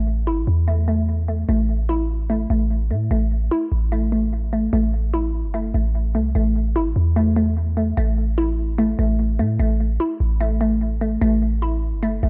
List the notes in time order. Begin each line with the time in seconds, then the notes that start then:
Already playing: A1 A3
0.27 G1 E4
0.37 A1
0.47 E2
0.68 A3
0.88 A3
1.28 A3
1.49 A1 A3
1.89 E4
2.30 A3
2.50 A1 A3
2.91 A2 A3
3.11 A1 A3
3.51 E4
3.72 A1
3.92 A3
4.12 A3
4.53 A3
4.73 A1 A3
5.14 E4
5.44 G1
5.54 A3
5.74 A1 A3
6.15 C2 A3
6.35 A1 A3
6.76 G1 E4
6.86 A1
6.96 E2
7.16 A3
7.36 A3
7.77 A3
7.97 A1 A3
8.38 E4
8.78 A3
8.99 A1 A3
9.39 A2 A3
9.59 A1 A3
10.00 E4
10.20 A1
10.41 A3
10.61 A3
11.01 A3
11.21 A1 A3
11.62 E4
11.93 G1
12.03 A3
12.23 A1 A3